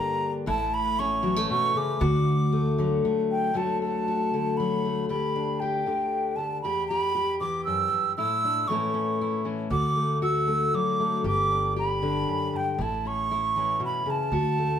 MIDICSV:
0, 0, Header, 1, 4, 480
1, 0, Start_track
1, 0, Key_signature, 2, "major"
1, 0, Tempo, 512821
1, 445, Time_signature, 3, 2, 24, 8
1, 13846, End_track
2, 0, Start_track
2, 0, Title_t, "Flute"
2, 0, Program_c, 0, 73
2, 0, Note_on_c, 0, 82, 95
2, 301, Note_off_c, 0, 82, 0
2, 451, Note_on_c, 0, 81, 96
2, 693, Note_on_c, 0, 83, 93
2, 707, Note_off_c, 0, 81, 0
2, 928, Note_on_c, 0, 85, 92
2, 942, Note_off_c, 0, 83, 0
2, 1400, Note_off_c, 0, 85, 0
2, 1405, Note_on_c, 0, 85, 101
2, 1660, Note_on_c, 0, 86, 92
2, 1674, Note_off_c, 0, 85, 0
2, 2849, Note_off_c, 0, 86, 0
2, 3103, Note_on_c, 0, 79, 75
2, 3341, Note_on_c, 0, 81, 77
2, 3355, Note_off_c, 0, 79, 0
2, 3566, Note_off_c, 0, 81, 0
2, 3571, Note_on_c, 0, 81, 85
2, 4279, Note_on_c, 0, 83, 82
2, 4293, Note_off_c, 0, 81, 0
2, 4761, Note_off_c, 0, 83, 0
2, 4765, Note_on_c, 0, 83, 82
2, 5240, Note_on_c, 0, 79, 75
2, 5254, Note_off_c, 0, 83, 0
2, 5954, Note_on_c, 0, 81, 79
2, 5968, Note_off_c, 0, 79, 0
2, 6189, Note_off_c, 0, 81, 0
2, 6195, Note_on_c, 0, 83, 89
2, 6423, Note_off_c, 0, 83, 0
2, 6437, Note_on_c, 0, 83, 102
2, 6888, Note_off_c, 0, 83, 0
2, 6930, Note_on_c, 0, 86, 82
2, 7152, Note_off_c, 0, 86, 0
2, 7159, Note_on_c, 0, 88, 90
2, 7609, Note_off_c, 0, 88, 0
2, 7652, Note_on_c, 0, 88, 96
2, 8122, Note_on_c, 0, 85, 81
2, 8136, Note_off_c, 0, 88, 0
2, 8845, Note_off_c, 0, 85, 0
2, 9089, Note_on_c, 0, 86, 100
2, 9535, Note_off_c, 0, 86, 0
2, 9574, Note_on_c, 0, 88, 84
2, 10061, Note_on_c, 0, 86, 99
2, 10075, Note_off_c, 0, 88, 0
2, 10534, Note_off_c, 0, 86, 0
2, 10549, Note_on_c, 0, 86, 97
2, 10985, Note_off_c, 0, 86, 0
2, 11034, Note_on_c, 0, 83, 86
2, 11758, Note_on_c, 0, 79, 73
2, 11772, Note_off_c, 0, 83, 0
2, 11998, Note_on_c, 0, 81, 84
2, 12012, Note_off_c, 0, 79, 0
2, 12234, Note_on_c, 0, 85, 96
2, 12248, Note_off_c, 0, 81, 0
2, 12939, Note_off_c, 0, 85, 0
2, 12966, Note_on_c, 0, 83, 89
2, 13202, Note_on_c, 0, 81, 86
2, 13216, Note_off_c, 0, 83, 0
2, 13846, Note_off_c, 0, 81, 0
2, 13846, End_track
3, 0, Start_track
3, 0, Title_t, "Steel-string acoustic guitar"
3, 0, Program_c, 1, 25
3, 0, Note_on_c, 1, 43, 78
3, 0, Note_on_c, 1, 50, 59
3, 0, Note_on_c, 1, 58, 58
3, 0, Note_on_c, 1, 62, 65
3, 0, Note_on_c, 1, 67, 77
3, 410, Note_off_c, 1, 62, 0
3, 413, Note_off_c, 1, 43, 0
3, 416, Note_off_c, 1, 67, 0
3, 419, Note_off_c, 1, 58, 0
3, 433, Note_on_c, 1, 45, 74
3, 441, Note_on_c, 1, 64, 77
3, 445, Note_off_c, 1, 50, 0
3, 931, Note_on_c, 1, 61, 70
3, 1150, Note_on_c, 1, 54, 63
3, 1156, Note_on_c, 1, 52, 67
3, 1276, Note_off_c, 1, 54, 0
3, 1276, Note_on_c, 1, 57, 47
3, 1397, Note_off_c, 1, 45, 0
3, 1404, Note_on_c, 1, 47, 74
3, 1635, Note_off_c, 1, 47, 0
3, 1638, Note_on_c, 1, 49, 65
3, 1849, Note_off_c, 1, 52, 0
3, 1851, Note_off_c, 1, 64, 0
3, 1856, Note_off_c, 1, 61, 0
3, 1873, Note_on_c, 1, 38, 82
3, 1878, Note_off_c, 1, 57, 0
3, 1879, Note_on_c, 1, 66, 68
3, 1880, Note_off_c, 1, 49, 0
3, 2364, Note_on_c, 1, 57, 72
3, 2605, Note_on_c, 1, 50, 66
3, 2615, Note_on_c, 1, 54, 58
3, 2842, Note_off_c, 1, 57, 0
3, 2853, Note_on_c, 1, 57, 65
3, 3290, Note_off_c, 1, 66, 0
3, 3298, Note_off_c, 1, 38, 0
3, 3302, Note_off_c, 1, 50, 0
3, 3304, Note_off_c, 1, 54, 0
3, 3309, Note_on_c, 1, 38, 63
3, 3311, Note_on_c, 1, 50, 52
3, 3314, Note_off_c, 1, 57, 0
3, 3317, Note_on_c, 1, 54, 55
3, 3325, Note_on_c, 1, 57, 55
3, 3335, Note_on_c, 1, 66, 57
3, 3563, Note_off_c, 1, 57, 0
3, 3575, Note_on_c, 1, 57, 49
3, 3808, Note_off_c, 1, 66, 0
3, 3817, Note_on_c, 1, 66, 65
3, 4048, Note_off_c, 1, 57, 0
3, 4054, Note_off_c, 1, 50, 0
3, 4058, Note_on_c, 1, 50, 59
3, 4062, Note_on_c, 1, 57, 52
3, 4279, Note_off_c, 1, 54, 0
3, 4303, Note_on_c, 1, 54, 58
3, 4531, Note_off_c, 1, 57, 0
3, 4541, Note_on_c, 1, 57, 50
3, 4742, Note_off_c, 1, 66, 0
3, 4754, Note_off_c, 1, 38, 0
3, 4765, Note_on_c, 1, 38, 73
3, 4771, Note_on_c, 1, 67, 63
3, 4772, Note_off_c, 1, 57, 0
3, 4773, Note_off_c, 1, 54, 0
3, 5014, Note_on_c, 1, 62, 50
3, 5252, Note_off_c, 1, 67, 0
3, 5256, Note_on_c, 1, 67, 67
3, 5477, Note_off_c, 1, 50, 0
3, 5485, Note_off_c, 1, 62, 0
3, 5488, Note_on_c, 1, 50, 57
3, 5496, Note_on_c, 1, 62, 55
3, 5962, Note_off_c, 1, 38, 0
3, 5973, Note_on_c, 1, 38, 61
3, 6182, Note_off_c, 1, 62, 0
3, 6182, Note_off_c, 1, 67, 0
3, 6207, Note_off_c, 1, 50, 0
3, 6209, Note_off_c, 1, 38, 0
3, 6217, Note_on_c, 1, 40, 62
3, 6223, Note_on_c, 1, 67, 68
3, 6452, Note_off_c, 1, 67, 0
3, 6463, Note_on_c, 1, 67, 61
3, 6681, Note_off_c, 1, 67, 0
3, 6692, Note_on_c, 1, 67, 63
3, 6929, Note_off_c, 1, 67, 0
3, 6932, Note_on_c, 1, 52, 61
3, 6942, Note_on_c, 1, 67, 61
3, 7172, Note_off_c, 1, 40, 0
3, 7178, Note_on_c, 1, 42, 63
3, 7411, Note_off_c, 1, 42, 0
3, 7415, Note_on_c, 1, 43, 58
3, 7621, Note_off_c, 1, 52, 0
3, 7626, Note_off_c, 1, 67, 0
3, 7651, Note_off_c, 1, 43, 0
3, 7654, Note_on_c, 1, 45, 69
3, 7660, Note_on_c, 1, 64, 64
3, 7904, Note_on_c, 1, 62, 52
3, 8105, Note_off_c, 1, 64, 0
3, 8107, Note_off_c, 1, 62, 0
3, 8117, Note_off_c, 1, 45, 0
3, 8129, Note_on_c, 1, 45, 75
3, 8136, Note_on_c, 1, 52, 56
3, 8144, Note_on_c, 1, 57, 59
3, 8155, Note_on_c, 1, 61, 60
3, 8162, Note_on_c, 1, 64, 67
3, 8355, Note_off_c, 1, 61, 0
3, 8366, Note_on_c, 1, 61, 57
3, 8614, Note_off_c, 1, 64, 0
3, 8625, Note_on_c, 1, 64, 67
3, 8831, Note_off_c, 1, 52, 0
3, 8836, Note_off_c, 1, 61, 0
3, 8842, Note_on_c, 1, 52, 56
3, 8847, Note_on_c, 1, 61, 49
3, 9056, Note_off_c, 1, 52, 0
3, 9059, Note_off_c, 1, 61, 0
3, 9067, Note_off_c, 1, 57, 0
3, 9067, Note_off_c, 1, 64, 0
3, 9084, Note_on_c, 1, 38, 67
3, 9088, Note_off_c, 1, 45, 0
3, 9090, Note_on_c, 1, 66, 63
3, 9322, Note_on_c, 1, 57, 53
3, 9554, Note_off_c, 1, 66, 0
3, 9565, Note_on_c, 1, 66, 70
3, 9796, Note_off_c, 1, 57, 0
3, 9802, Note_on_c, 1, 50, 56
3, 9807, Note_on_c, 1, 57, 56
3, 10051, Note_on_c, 1, 54, 54
3, 10282, Note_off_c, 1, 57, 0
3, 10294, Note_on_c, 1, 57, 60
3, 10497, Note_off_c, 1, 66, 0
3, 10519, Note_off_c, 1, 38, 0
3, 10523, Note_on_c, 1, 43, 65
3, 10529, Note_off_c, 1, 54, 0
3, 10530, Note_off_c, 1, 57, 0
3, 10533, Note_on_c, 1, 67, 61
3, 10781, Note_on_c, 1, 62, 52
3, 10999, Note_off_c, 1, 67, 0
3, 11010, Note_on_c, 1, 67, 68
3, 11240, Note_off_c, 1, 50, 0
3, 11246, Note_off_c, 1, 62, 0
3, 11251, Note_on_c, 1, 50, 59
3, 11258, Note_on_c, 1, 62, 59
3, 11484, Note_off_c, 1, 43, 0
3, 11493, Note_on_c, 1, 42, 62
3, 11728, Note_off_c, 1, 42, 0
3, 11732, Note_on_c, 1, 43, 60
3, 11939, Note_off_c, 1, 67, 0
3, 11943, Note_off_c, 1, 62, 0
3, 11968, Note_off_c, 1, 50, 0
3, 11969, Note_off_c, 1, 43, 0
3, 11982, Note_on_c, 1, 45, 70
3, 11988, Note_on_c, 1, 64, 65
3, 12216, Note_on_c, 1, 61, 50
3, 12449, Note_off_c, 1, 64, 0
3, 12460, Note_on_c, 1, 64, 67
3, 12690, Note_off_c, 1, 61, 0
3, 12692, Note_on_c, 1, 52, 65
3, 12704, Note_on_c, 1, 61, 55
3, 12911, Note_off_c, 1, 45, 0
3, 12915, Note_on_c, 1, 47, 70
3, 13156, Note_off_c, 1, 47, 0
3, 13160, Note_on_c, 1, 49, 66
3, 13380, Note_off_c, 1, 52, 0
3, 13384, Note_off_c, 1, 64, 0
3, 13386, Note_off_c, 1, 61, 0
3, 13402, Note_off_c, 1, 49, 0
3, 13405, Note_on_c, 1, 38, 71
3, 13410, Note_on_c, 1, 66, 61
3, 13649, Note_on_c, 1, 57, 54
3, 13846, Note_off_c, 1, 38, 0
3, 13846, Note_off_c, 1, 57, 0
3, 13846, Note_off_c, 1, 66, 0
3, 13846, End_track
4, 0, Start_track
4, 0, Title_t, "Upright bass"
4, 0, Program_c, 2, 32
4, 442, Note_on_c, 2, 33, 100
4, 1364, Note_off_c, 2, 33, 0
4, 1881, Note_on_c, 2, 38, 113
4, 2803, Note_off_c, 2, 38, 0
4, 9083, Note_on_c, 2, 38, 95
4, 10008, Note_off_c, 2, 38, 0
4, 10523, Note_on_c, 2, 31, 86
4, 11447, Note_off_c, 2, 31, 0
4, 11966, Note_on_c, 2, 33, 94
4, 12888, Note_off_c, 2, 33, 0
4, 13399, Note_on_c, 2, 38, 85
4, 13846, Note_off_c, 2, 38, 0
4, 13846, End_track
0, 0, End_of_file